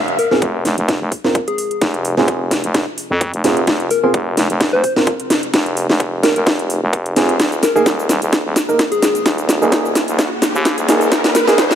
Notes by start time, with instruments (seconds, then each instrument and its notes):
Already playing: fm bass F1, analog synth pad C4 F4 G#4
0.08 closed hi-hat
0.19 soft synth lead A#4, open hi-hat
0.31 grand piano C4 F4 G#4, soft synth lead A#4, snare
0.42 fm bass F1, kick, closed hi-hat
0.65 fm bass F1, snare, open hi-hat
0.78 fm bass F1, closed hi-hat
0.88 kick, snare, closed hi-hat
1.01 fm bass F1
1.12 kick, open hi-hat
1.24 grand piano C4 F4 A#4, snare
1.35 kick, closed hi-hat
1.48 soft synth lead G#4, closed hi-hat
1.58 open hi-hat
1.71 closed hi-hat
1.81 fm bass F1, kick, snare, closed hi-hat
1.94 closed hi-hat
2.05 open hi-hat
2.17 fm bass F1, grand piano C4 F4 G#4, snare
2.28 kick, closed hi-hat
2.51 kick, snare, open hi-hat
2.64 fm bass F1, closed hi-hat
2.74 kick, snare, closed hi-hat
2.98 open hi-hat
3.10 fm bass F2
3.21 kick, closed hi-hat
3.34 fm bass F1, closed hi-hat
3.44 fm bass F1, grand piano C4 F4 G#4, snare, open hi-hat
3.57 closed hi-hat
3.67 fm bass F1, kick, snare, closed hi-hat
3.80 closed hi-hat
3.91 soft synth lead A#4, open hi-hat
4.03 grand piano C4 F4 G#4, soft synth lead A#4
4.14 fm bass F1, kick, closed hi-hat
4.37 fm bass F1, snare, open hi-hat
4.50 fm bass F1, closed hi-hat
4.60 kick, snare, closed hi-hat
4.73 fm bass F1, soft synth lead C5
4.84 kick, open hi-hat
4.96 grand piano C4 F4 A#4, snare
5.07 kick, closed hi-hat
5.20 closed hi-hat
5.30 snare, open hi-hat
5.43 closed hi-hat
5.54 fm bass F1, kick, snare, closed hi-hat
5.66 closed hi-hat
5.77 open hi-hat
5.89 fm bass F1, snare
6.00 kick, closed hi-hat
6.23 soft synth lead A#4, kick, snare, open hi-hat
6.36 fm bass F1, soft synth lead A#4, closed hi-hat
6.47 kick, snare, closed hi-hat
6.59 closed hi-hat
6.70 open hi-hat
6.82 fm bass F1
6.93 kick, closed hi-hat
7.06 closed hi-hat
7.16 fm bass F1, grand piano C4 F4 G#4, snare, open hi-hat
7.29 closed hi-hat
7.40 fm bass D#1, analog synth pad A#3 D#4, kick, snare, closed hi-hat, riser, shaker
7.52 closed hi-hat, shaker
7.63 soft synth lead A#4, snare, open hi-hat, shaker
7.75 grand piano A#3 D#4 G#4, soft synth lead A#4, shaker
7.86 fm bass D#1, kick, snare, closed hi-hat, shaker
7.99 shaker
8.09 fm bass D#1, snare, open hi-hat, shaker
8.22 fm bass D#1, closed hi-hat, shaker
8.33 kick, snare, closed hi-hat, shaker
8.45 fm bass D#1
8.56 kick, snare, open hi-hat, shaker
8.68 grand piano A#3 D#4 A#4, shaker
8.79 kick, snare, closed hi-hat, shaker
8.92 soft synth lead G#4, closed hi-hat, shaker
9.02 snare, open hi-hat, shaker
9.15 closed hi-hat, shaker
9.26 fm bass D#1, kick, snare, closed hi-hat, shaker
9.38 closed hi-hat, shaker
9.49 snare, open hi-hat, shaker
9.61 fm bass D#1, grand piano A#3 D#4 G#4, shaker
9.72 kick, snare, closed hi-hat, shaker
9.85 shaker
9.95 kick, snare, open hi-hat, shaker
10.08 fm bass D#1, closed hi-hat, shaker
10.19 kick, snare, closed hi-hat, shaker
10.42 snare, open hi-hat, shaker
10.55 fm bass D#2, shaker
10.65 kick, snare, closed hi-hat, shaker
10.78 fm bass D#1, closed hi-hat, shaker
10.88 fm bass D#1, grand piano A#3 D#4 G#4, snare, open hi-hat, shaker
11.01 closed hi-hat, shaker
11.12 fm bass D#1, analog synth pad F4, kick, snare, closed hi-hat, shaker
11.24 snare, closed hi-hat, shaker
11.35 soft synth lead A#4, snare, open hi-hat, shaker
11.47 grand piano A#3 D#4 G#4, soft synth lead A#4, snare, shaker
11.58 fm bass D#1, kick, snare, closed hi-hat, shaker
11.71 snare, shaker